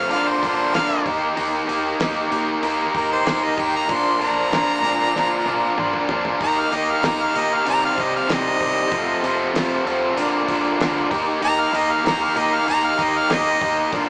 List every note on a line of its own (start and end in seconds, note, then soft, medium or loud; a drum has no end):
0.00 0.10 F4 medium
0.00 0.10 F5 loud
0.08 0.33 A#1 medium
0.08 0.40 A#2 medium
0.08 0.41 D3 medium
0.08 0.42 A#3 loud
0.08 1.04 D4 medium
0.08 0.41 D4 loud
0.08 1.03 F4 medium
0.08 0.42 F4 loud
0.08 1.02 A#4 medium
0.08 open hi-hat medium
0.12 0.30 F5 medium
0.28 0.73 C5 medium
0.41 0.64 A#1 medium
0.41 0.72 A#2 medium
0.41 0.72 D3 medium
0.41 0.73 A#3 medium
0.41 0.73 D4 medium
0.41 0.73 F4 medium
0.41 kick medium
0.41 open hi-hat medium
0.73 0.95 A#1 medium
0.73 1.03 A#2 medium
0.73 1.04 D3 medium
0.73 1.05 A#3 medium
0.73 1.04 D4 loud
0.73 1.04 F4 loud
0.73 1.05 F5 loud
0.73 snare loud
0.73 open hi-hat medium
1.03 1.27 D#2 medium
1.03 1.35 D#3 medium
1.03 1.36 A#3 medium
1.03 3.86 D#4 medium
1.03 1.36 D#4 loud
1.03 3.85 G4 medium
1.03 1.36 G4 loud
1.03 3.85 A#4 medium
1.03 kick loud
1.03 open hi-hat medium
1.36 1.59 D#2 medium
1.36 1.67 D#3 medium
1.36 1.68 A#3 medium
1.36 1.67 D#4 loud
1.36 1.68 G4 loud
1.36 open hi-hat medium
1.68 1.90 D#2 medium
1.68 1.99 D#3 medium
1.68 2.00 A#3 medium
1.68 1.99 D#4 medium
1.68 2.00 G4 medium
1.68 open hi-hat medium
2.00 2.21 D#2 medium
2.00 2.30 D#3 medium
2.00 2.31 A#3 medium
2.00 2.30 D#4 medium
2.00 2.31 G4 loud
2.00 snare loud
2.00 open hi-hat medium
2.31 2.53 A#2 medium
2.31 2.60 D#3 medium
2.31 2.62 A#3 medium
2.31 2.62 D#4 medium
2.31 2.62 G4 medium
2.31 open hi-hat soft
2.62 2.84 D#2 medium
2.62 2.92 D#3 loud
2.62 2.94 A#3 loud
2.62 2.93 D#4 loud
2.62 2.93 G4 loud
2.62 open hi-hat medium
2.93 3.16 D#2 medium
2.93 3.24 D#3 medium
2.93 3.25 A#3 medium
2.93 3.25 D#4 medium
2.93 3.25 G4 medium
2.93 3.11 A#4 medium
2.93 kick medium
2.93 open hi-hat medium
3.12 3.45 C5 medium
3.25 3.48 D#2 medium
3.25 3.57 D#3 medium
3.25 3.58 A#3 loud
3.25 3.57 D#4 loud
3.25 3.58 G4 loud
3.25 snare loud
3.25 open hi-hat medium
3.44 3.62 D#5 medium
3.57 3.79 D#2 medium
3.57 3.87 D#3 medium
3.57 3.89 A#3 medium
3.57 3.88 D#4 medium
3.57 3.88 G4 medium
3.57 3.74 G5 medium
3.57 kick medium
3.57 open hi-hat medium
3.76 3.94 A#5 loud
3.88 4.11 A#1 medium
3.88 4.18 A#2 medium
3.88 4.19 D3 medium
3.88 4.19 F3 loud
3.88 4.19 A#3 medium
3.88 6.38 D4 medium
3.88 4.19 D4 medium
3.88 6.38 F4 medium
3.88 4.20 F4 medium
3.88 6.38 A#4 medium
3.88 kick loud
3.88 open hi-hat medium
3.93 4.22 C6 medium
4.19 4.41 A#1 medium
4.19 4.51 A#2 medium
4.19 4.50 D3 medium
4.19 4.51 F3 medium
4.19 4.52 A#3 medium
4.19 4.52 D4 medium
4.19 4.52 F4 medium
4.19 open hi-hat medium
4.24 6.07 A#5 loud
4.51 4.73 A#1 medium
4.51 4.82 A#2 medium
4.51 4.82 D3 loud
4.51 4.83 F3 medium
4.51 4.83 A#3 loud
4.51 4.84 D4 medium
4.51 4.84 F4 loud
4.51 snare loud
4.51 open hi-hat medium
4.82 5.04 G#2 medium
4.82 5.14 A#2 medium
4.82 5.14 D3 medium
4.82 5.15 F3 medium
4.82 5.15 A#3 medium
4.82 5.15 D4 medium
4.82 5.16 F4 medium
4.82 open hi-hat soft
5.15 5.36 A#1 medium
5.15 5.45 A#2 medium
5.15 5.45 D3 medium
5.15 5.46 F3 loud
5.15 5.46 A#3 loud
5.15 5.47 D4 medium
5.15 5.47 F4 loud
5.15 snare medium
5.45 5.67 A#1 medium
5.45 5.77 A#2 medium
5.45 5.77 D3 medium
5.45 5.77 F3 medium
5.45 5.77 A#3 medium
5.45 5.78 D4 medium
5.45 5.79 F4 medium
5.45 high tom medium
5.77 5.99 A#1 medium
5.77 6.07 A#2 medium
5.77 6.08 D3 medium
5.77 6.08 F3 medium
5.77 6.08 A#3 medium
5.77 6.09 D4 medium
5.77 6.09 F4 loud
5.77 mid tom medium
5.93 mid tom medium
6.09 6.31 F2 medium
6.09 6.39 A#2 medium
6.09 6.39 D3 medium
6.09 6.39 F3 medium
6.09 6.39 A#3 medium
6.09 6.39 D4 medium
6.09 6.40 F4 medium
6.09 floor tom loud
6.25 floor tom medium
6.40 6.62 D#2 medium
6.40 6.71 D#3 medium
6.40 6.71 A#3 medium
6.40 7.65 D#4 medium
6.40 6.71 D#4 medium
6.40 7.65 G4 medium
6.40 6.72 G4 loud
6.40 7.65 A#4 medium
6.40 6.62 A#5 loud
6.40 kick loud
6.40 open hi-hat medium
6.60 6.76 F5 medium
6.72 6.93 D#2 medium
6.72 7.02 D#3 medium
6.72 7.03 A#3 medium
6.72 7.03 D#4 medium
6.72 7.03 G4 medium
6.72 6.92 D#5 medium
6.72 open hi-hat medium
6.91 7.08 F5 medium
7.03 7.25 D#2 medium
7.03 7.34 D#3 loud
7.03 7.34 A#3 medium
7.03 7.35 D#4 loud
7.03 7.35 G4 loud
7.03 7.24 A#5 medium
7.03 snare loud
7.03 open hi-hat medium
7.23 7.40 F5 medium
7.35 7.56 A#2 medium
7.35 7.65 D#3 medium
7.35 7.65 A#3 medium
7.35 7.65 D#4 medium
7.35 7.65 G4 medium
7.35 7.56 D#5 medium
7.35 open hi-hat medium
7.54 7.67 F5 medium
7.66 7.88 C2 medium
7.66 7.97 C3 medium
7.66 7.97 D#3 loud
7.66 7.98 G3 loud
7.66 7.98 C4 loud
7.66 8.91 D#4 medium
7.66 8.91 G4 medium
7.66 7.98 G4 loud
7.66 8.91 C5 medium
7.66 7.83 A#5 medium
7.66 open hi-hat medium
7.85 8.03 F5 medium
7.98 8.19 C2 medium
7.98 8.28 C3 medium
7.98 8.28 D#3 medium
7.98 8.29 G3 medium
7.98 8.29 C4 medium
7.98 8.30 G4 medium
7.98 kick medium
7.98 open hi-hat medium
8.02 8.15 D#5 medium
8.16 8.34 F5 medium
8.29 8.51 C2 medium
8.29 8.59 C3 medium
8.29 8.60 D#3 medium
8.29 8.60 G3 medium
8.29 8.61 C4 loud
8.29 8.61 G4 medium
8.29 9.53 D#5 loud
8.29 snare loud
8.29 open hi-hat medium
8.60 8.82 C2 medium
8.60 8.90 C3 medium
8.60 8.90 D#3 medium
8.60 8.91 G3 medium
8.60 8.91 C4 medium
8.60 8.91 G4 medium
8.60 kick medium
8.60 open hi-hat medium
8.92 9.13 F1 loud
8.92 9.22 F2 medium
8.92 9.23 C3 medium
8.92 9.23 F3 medium
8.92 9.23 A3 medium
8.92 9.23 C4 loud
8.92 10.16 F4 medium
8.92 9.24 F4 loud
8.92 10.16 G4 medium
8.92 10.16 A4 medium
8.92 kick loud
8.92 open hi-hat medium
9.22 9.44 F1 medium
9.22 9.53 F2 medium
9.22 9.53 C3 medium
9.22 9.53 F3 medium
9.22 9.54 A3 medium
9.22 9.54 C4 medium
9.22 9.54 F4 medium
9.22 open hi-hat medium
9.54 9.75 F1 medium
9.54 9.84 F2 medium
9.54 9.85 C3 loud
9.54 9.85 F3 medium
9.54 9.85 A3 loud
9.54 9.85 C4 loud
9.54 9.86 F4 loud
9.54 snare loud
9.54 open hi-hat medium
9.85 10.07 D#2 medium
9.85 10.15 F2 medium
9.85 10.15 C3 medium
9.85 10.16 F3 medium
9.85 10.16 A3 medium
9.85 10.16 C4 medium
9.85 10.16 F4 medium
9.85 open hi-hat soft
10.16 10.39 A#1 medium
10.16 10.46 A#2 loud
10.16 10.47 D3 medium
10.16 10.48 A#3 loud
10.16 10.47 D4 loud
10.16 11.11 D4 medium
10.16 10.48 F4 loud
10.16 11.11 F4 medium
10.16 11.11 A#4 medium
10.16 open hi-hat medium
10.47 10.70 A#1 medium
10.47 10.78 A#2 medium
10.47 10.78 D3 medium
10.47 10.79 A#3 medium
10.47 10.79 D4 loud
10.47 10.79 F4 medium
10.47 kick medium
10.47 open hi-hat medium
10.79 11.01 D2 medium
10.79 11.09 A#2 medium
10.79 11.09 D3 medium
10.79 11.10 A#3 medium
10.79 11.10 D4 loud
10.79 11.10 F4 loud
10.79 snare loud
10.79 open hi-hat medium
11.10 11.33 D#2 medium
11.10 11.40 D#3 medium
11.10 11.41 A#3 loud
11.10 11.40 D#4 loud
11.10 13.91 D#4 medium
11.10 11.41 G4 medium
11.10 13.91 G4 medium
11.10 13.91 A#4 medium
11.10 kick loud
11.10 open hi-hat medium
11.41 11.63 D#2 medium
11.41 11.71 D#3 medium
11.41 11.73 A#3 medium
11.41 11.72 D#4 loud
11.41 11.72 G4 loud
11.41 11.62 A#5 loud
11.41 open hi-hat medium
11.60 11.78 F5 loud
11.72 11.95 D#2 medium
11.72 12.03 D#3 medium
11.72 12.04 A#3 medium
11.72 12.04 D#4 medium
11.72 12.04 G4 loud
11.72 open hi-hat medium
11.77 11.93 D#5 medium
11.92 12.05 F5 medium
12.04 12.26 D#2 medium
12.04 12.34 D#3 medium
12.04 12.35 A#3 loud
12.04 12.35 D#4 loud
12.04 12.36 G4 loud
12.04 12.25 A#5 loud
12.04 snare loud
12.04 open hi-hat medium
12.23 12.40 F5 loud
12.35 12.58 A#2 medium
12.35 12.66 D#3 medium
12.35 12.66 A#3 medium
12.35 12.67 D#4 medium
12.35 12.67 G4 medium
12.35 12.56 D#5 medium
12.35 open hi-hat medium
12.55 12.68 F5 loud
12.67 12.89 D#2 medium
12.67 12.97 D#3 loud
12.67 12.98 A#3 loud
12.67 12.98 D#4 loud
12.67 12.98 G4 loud
12.67 12.88 A#5 loud
12.67 open hi-hat medium
12.87 13.05 F5 loud
12.98 13.20 D#2 medium
12.98 13.28 D#3 medium
12.98 13.28 A#3 medium
12.98 13.29 D#4 medium
12.98 13.29 G4 loud
12.98 kick medium
12.98 open hi-hat medium
13.03 13.19 D#5 medium
13.18 13.31 F5 loud
13.29 13.52 D#2 medium
13.29 13.59 D#3 medium
13.29 13.60 A#3 medium
13.29 13.60 D#4 medium
13.29 13.60 G4 loud
13.29 13.92 D#5 loud
13.29 snare loud
13.29 open hi-hat medium
13.60 13.83 D#2 medium
13.60 13.90 D#3 medium
13.60 13.91 A#3 medium
13.60 13.91 D#4 loud
13.60 13.91 G4 medium
13.60 kick medium
13.60 open hi-hat medium
13.92 14.09 A#1 loud
13.92 14.09 A#2 medium
13.92 14.09 D3 loud
13.92 14.09 A#3 loud
13.92 14.09 D4 loud
13.92 14.09 D4 medium
13.92 14.09 F4 loud
13.92 14.09 F4 medium
13.92 14.09 A#4 medium
13.92 kick loud
13.92 open hi-hat medium